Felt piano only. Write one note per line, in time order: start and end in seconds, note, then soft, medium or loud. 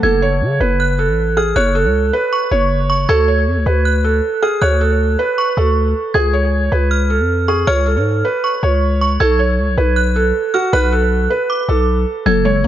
0.03 0.21 A4 medium
0.22 0.58 C#5 medium
0.60 0.96 B4 medium
0.99 1.35 A4 medium
1.37 1.55 G#4 medium
1.56 1.74 C#5 loud
1.75 2.11 A4 medium
2.13 2.49 B4 medium
2.51 3.05 C#5 medium
3.09 3.27 A4 loud
3.28 3.64 C#5 medium
3.66 4.02 B4 medium
4.04 4.40 A4 medium
4.43 4.61 G#4 medium
4.62 4.80 C#5 medium
4.81 5.17 A4 medium
5.19 5.55 B4 medium
5.57 6.11 A4 medium
6.15 6.33 G#4 medium
6.33 6.69 C#5 medium
6.72 7.08 B4 medium
7.10 7.46 A4 medium
7.48 7.66 G#4 medium
7.67 7.85 C#5 loud
7.86 8.22 A4 medium
8.25 8.61 B4 medium
8.63 9.17 C#5 medium
9.20 9.38 A4 loud
9.39 9.75 C#5 medium
9.78 10.13 B4 medium
10.16 10.52 A4 medium
10.54 10.72 F#4 medium
10.73 10.91 B4 loud
10.92 11.28 A4 medium
11.30 11.66 B4 medium
11.69 12.23 A4 medium
12.26 12.44 A4 medium
12.45 12.68 C#5 medium